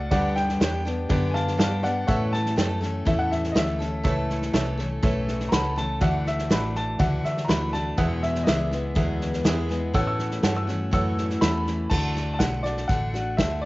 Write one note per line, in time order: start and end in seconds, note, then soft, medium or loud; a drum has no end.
0.00 0.10 C#2 medium
0.00 0.12 A3 medium
0.00 0.12 D4 medium
0.00 0.12 F#4 medium
0.00 0.10 F#5 medium
0.11 0.59 D2 medium
0.11 0.61 G2 medium
0.11 0.61 D3 medium
0.11 0.59 G3 medium
0.11 0.60 B3 medium
0.11 0.60 D4 medium
0.11 0.45 G4 medium
0.11 0.61 G4 medium
0.11 0.45 B4 medium
0.11 0.34 D5 medium
0.11 0.45 D5 loud
0.11 0.36 F#5 medium
0.11 kick loud
0.11 snare soft
0.36 0.84 G5 loud
0.36 snare soft
0.49 snare soft
0.60 1.08 E2 loud
0.60 0.85 G3 medium
0.60 0.85 B3 medium
0.60 0.84 D4 medium
0.60 0.94 G4 medium
0.60 0.84 G4 medium
0.60 0.94 B4 medium
0.60 0.94 C#5 medium
0.60 snare loud
0.60 hi-hat pedal medium
0.85 1.11 G3 soft
0.85 1.09 B3 soft
0.85 1.09 D4 soft
0.85 1.09 G4 soft
0.85 snare soft
1.09 1.58 F#2 medium
1.09 1.59 D3 medium
1.09 1.58 B3 loud
1.09 1.58 D4 loud
1.09 1.43 G4 medium
1.09 1.59 G4 medium
1.09 1.43 B4 medium
1.09 1.43 D5 loud
1.09 kick loud
1.09 snare soft
1.30 1.33 G#5 medium
1.34 1.57 F5 medium
1.34 1.58 A5 medium
1.34 snare soft
1.47 snare soft
1.58 2.07 G2 medium
1.58 1.83 G3 medium
1.58 1.83 B3 medium
1.58 1.82 D4 medium
1.58 1.92 G4 medium
1.58 1.82 G4 medium
1.58 1.92 B4 medium
1.58 1.92 D5 medium
1.58 1.82 F5 medium
1.58 1.83 A5 medium
1.58 snare loud
1.58 hi-hat pedal medium
1.83 2.08 G3 soft
1.83 2.08 B3 soft
1.83 2.08 D4 soft
1.83 2.08 G4 soft
1.83 2.06 D5 medium
1.83 2.06 F#5 medium
1.83 snare soft
2.07 2.57 A2 medium
2.07 2.56 A2 medium
2.07 2.56 E3 medium
2.07 2.57 A3 medium
2.07 2.57 C#4 medium
2.07 2.41 A4 loud
2.07 2.58 A4 medium
2.07 2.31 C#5 medium
2.07 2.41 C#5 medium
2.07 2.41 E5 loud
2.07 2.32 F#5 medium
2.07 kick loud
2.07 snare soft
2.33 2.81 A5 loud
2.33 snare soft
2.46 snare soft
2.56 3.05 F#2 medium
2.56 2.81 E3 medium
2.56 2.82 A3 medium
2.56 2.81 C#4 medium
2.56 2.90 A4 medium
2.56 2.79 A4 medium
2.56 2.90 C#5 medium
2.56 2.91 G5 medium
2.56 snare loud
2.56 hi-hat pedal medium
2.81 3.05 A3 soft
2.81 3.06 C#4 soft
2.81 3.06 A4 soft
2.81 snare soft
3.05 3.54 E2 medium
3.05 3.55 A2 medium
3.05 3.54 E3 medium
3.05 3.55 A3 medium
3.05 3.55 C#4 medium
3.05 3.40 A4 medium
3.05 3.57 A4 medium
3.05 3.40 C#5 medium
3.05 3.18 E5 medium
3.05 3.40 E5 medium
3.05 kick loud
3.05 snare soft
3.19 3.30 F#5 medium
3.31 3.55 E5 medium
3.31 snare soft
3.44 snare soft
3.52 3.80 E3 medium
3.52 3.80 A3 medium
3.52 3.89 A4 medium
3.52 3.89 C#5 medium
3.52 3.55 D#5 medium
3.52 3.89 E5 medium
3.52 snare loud
3.52 hi-hat pedal medium
3.56 4.04 D2 medium
3.56 3.79 C#4 medium
3.56 3.77 A4 medium
3.56 4.52 E5 medium
3.79 4.03 A3 soft
3.79 4.04 C#4 soft
3.79 4.04 A4 soft
3.79 snare soft
4.03 4.53 C#2 medium
4.03 4.53 A2 medium
4.03 4.53 E3 medium
4.03 4.54 A3 medium
4.03 4.54 C#4 medium
4.03 4.38 A4 loud
4.03 4.55 A4 medium
4.03 4.38 C#5 medium
4.03 4.38 E5 loud
4.03 kick loud
4.03 snare soft
4.30 snare soft
4.42 snare soft
4.53 5.02 C2 medium
4.53 4.78 E3 medium
4.53 4.79 A3 medium
4.53 4.78 C#4 medium
4.53 4.87 A4 medium
4.53 4.76 A4 medium
4.53 4.87 C#5 medium
4.53 4.87 E5 medium
4.53 snare loud
4.53 hi-hat pedal medium
4.77 5.02 A3 soft
4.77 5.02 C#4 soft
4.77 5.02 A4 medium
4.77 snare soft
5.02 5.51 B1 medium
5.02 5.52 A2 medium
5.02 5.51 E3 medium
5.02 5.51 A3 medium
5.02 5.52 C#4 loud
5.02 5.36 A4 medium
5.02 5.53 A4 medium
5.02 5.36 C#5 medium
5.02 5.36 E5 loud
5.02 kick loud
5.02 snare soft
5.28 snare soft
5.40 snare soft
5.49 6.00 C#2 loud
5.49 5.77 E3 medium
5.49 5.77 A3 medium
5.49 5.85 A4 medium
5.49 5.85 C#5 medium
5.49 5.85 F#5 medium
5.49 5.52 A#5 medium
5.49 snare loud
5.49 hi-hat pedal medium
5.53 5.76 C#4 medium
5.53 5.75 A4 medium
5.53 5.76 B5 loud
5.76 6.00 A3 soft
5.76 6.01 C#4 soft
5.76 6.01 A4 medium
5.76 6.01 A5 medium
5.76 snare soft
6.01 6.49 D2 medium
6.01 6.50 D3 medium
6.01 6.49 E3 medium
6.01 6.49 A3 medium
6.01 6.50 D4 medium
6.01 6.34 F#4 loud
6.01 6.51 F#4 medium
6.01 6.34 D5 medium
6.01 6.35 E5 loud
6.01 6.26 F#5 medium
6.01 kick loud
6.01 snare soft
6.26 6.51 E5 medium
6.26 snare soft
6.38 snare soft
6.50 6.98 A1 medium
6.50 6.99 E3 medium
6.50 6.99 A3 medium
6.50 6.99 D4 medium
6.50 6.84 F#4 medium
6.50 6.99 F#4 medium
6.50 6.84 D5 medium
6.50 6.84 E5 medium
6.50 6.75 B5 medium
6.50 snare loud
6.50 hi-hat pedal medium
6.75 7.00 A5 medium
6.75 snare soft
6.99 7.23 C#2 medium
6.99 7.49 D3 medium
6.99 7.48 E3 medium
6.99 7.48 A3 medium
6.99 7.48 D4 medium
6.99 7.33 F#4 medium
6.99 7.49 F#4 medium
6.99 7.33 D5 medium
6.99 7.33 E5 medium
6.99 7.24 F#5 medium
6.99 kick loud
6.99 snare soft
7.25 7.48 E5 medium
7.25 snare soft
7.37 snare soft
7.45 7.73 E3 medium
7.45 7.82 F#4 medium
7.45 7.82 D5 medium
7.45 7.82 E5 medium
7.45 7.48 A#5 medium
7.49 7.97 D2 loud
7.49 7.74 A3 medium
7.49 7.73 D4 medium
7.49 7.72 F#4 medium
7.49 7.73 B5 loud
7.49 snare loud
7.49 hi-hat pedal medium
7.73 7.98 A3 soft
7.73 7.98 D4 soft
7.73 7.98 F#4 soft
7.73 7.97 A5 medium
7.73 snare soft
7.97 8.47 E2 medium
7.97 8.46 E2 medium
7.97 8.47 B2 medium
7.97 8.46 E3 medium
7.97 8.46 G#3 medium
7.97 8.47 B3 medium
7.97 8.31 G#4 medium
7.97 8.47 G#4 medium
7.97 8.31 B4 medium
7.97 8.31 E5 loud
7.97 8.22 F#5 medium
7.97 kick loud
7.97 snare soft
8.22 8.46 E5 medium
8.22 snare soft
8.35 snare soft
8.43 8.71 E3 medium
8.43 8.71 G#3 medium
8.43 8.80 G#4 medium
8.43 8.46 D#5 medium
8.43 snare loud
8.43 hi-hat pedal medium
8.47 8.95 C#2 medium
8.47 8.71 B3 medium
8.47 8.70 G#4 medium
8.47 8.80 B4 medium
8.47 8.80 D5 medium
8.47 8.95 E5 loud
8.71 8.95 E3 soft
8.71 8.95 G#3 soft
8.71 8.95 B3 soft
8.71 8.96 G#4 soft
8.71 snare soft
8.95 9.44 D2 medium
8.95 9.45 E2 medium
8.95 9.45 B2 medium
8.95 9.43 E3 medium
8.95 9.44 G#3 medium
8.95 9.45 B3 medium
8.95 9.29 G#4 medium
8.95 9.45 G#4 medium
8.95 9.29 B4 medium
8.95 9.29 E5 medium
8.95 kick loud
8.95 snare soft
9.21 snare soft
9.33 snare soft
9.44 9.93 E2 loud
9.44 9.69 E3 medium
9.44 9.70 G#3 medium
9.44 9.69 B3 medium
9.44 9.78 G#4 medium
9.44 9.68 G#4 medium
9.44 9.78 B4 medium
9.44 9.79 E5 loud
9.44 snare loud
9.44 hi-hat pedal medium
9.69 9.93 E3 soft
9.69 9.94 G#3 soft
9.69 9.95 B3 medium
9.69 9.94 G#4 medium
9.69 snare soft
9.94 10.43 A2 medium
9.94 10.42 A2 medium
9.94 10.42 E3 medium
9.94 10.42 A3 medium
9.94 10.43 C#4 medium
9.94 10.44 F#4 loud
9.94 10.27 A4 loud
9.94 10.28 C#5 medium
9.94 10.28 F#5 loud
9.94 10.06 E6 loud
9.94 kick loud
9.94 snare soft
10.07 10.31 E6 medium
10.19 snare soft
10.31 snare soft
10.43 10.91 G2 loud
10.43 10.68 E3 medium
10.43 10.68 A3 medium
10.43 10.67 C#4 medium
10.43 10.66 F#4 medium
10.43 10.77 A4 medium
10.43 10.77 C#5 medium
10.43 10.77 F#5 medium
10.43 snare loud
10.43 hi-hat pedal medium
10.57 10.92 E6 medium
10.67 10.91 A3 soft
10.67 10.92 C#4 soft
10.67 10.92 F#4 medium
10.67 snare soft
10.91 11.41 F#2 medium
10.91 11.41 A2 medium
10.91 11.40 E3 medium
10.91 11.41 A3 medium
10.91 11.41 C#4 medium
10.91 11.42 F#4 medium
10.91 11.26 A4 medium
10.91 11.26 C#5 medium
10.91 11.26 F#5 medium
10.91 11.41 E6 medium
10.91 kick loud
10.91 snare soft
11.18 snare soft
11.30 snare soft
11.41 11.90 E2 medium
11.41 11.90 E3 medium
11.41 11.89 A3 medium
11.41 11.91 C#4 medium
11.41 11.90 F#4 medium
11.41 11.75 A4 medium
11.41 11.75 C#5 medium
11.41 11.75 E5 medium
11.41 11.87 B5 loud
11.41 snare loud
11.41 hi-hat pedal medium
11.67 snare soft
11.90 12.39 D2 medium
11.90 12.64 D3 medium
11.90 12.65 A3 medium
11.90 12.64 D4 medium
11.90 12.63 F#4 medium
11.90 12.32 A5 medium
11.90 kick loud
11.90 snare soft
11.90 crash medium
12.16 snare soft
12.34 12.40 A5 medium
12.39 12.88 B1 medium
12.39 12.65 F#5 medium
12.39 kick medium
12.39 snare loud
12.39 hi-hat pedal medium
12.63 12.89 A3 soft
12.63 12.89 D4 soft
12.63 12.89 F#4 medium
12.63 12.89 D5 medium
12.63 snare soft
12.77 snare soft
12.88 13.37 A1 medium
12.88 13.14 D3 medium
12.88 13.14 A3 medium
12.88 13.14 D4 medium
12.88 13.12 F#4 medium
12.88 13.34 F#5 medium
12.88 kick loud
12.88 snare soft
13.13 13.38 A3 soft
13.13 13.38 D4 soft
13.13 13.38 F#4 medium
13.13 snare soft
13.37 13.65 D2 medium
13.37 13.65 D3 medium
13.37 13.65 A3 medium
13.37 13.65 D4 medium
13.37 13.65 F#4 medium
13.37 13.61 E5 medium
13.37 kick medium
13.37 snare loud
13.37 hi-hat pedal medium
13.62 13.65 D5 medium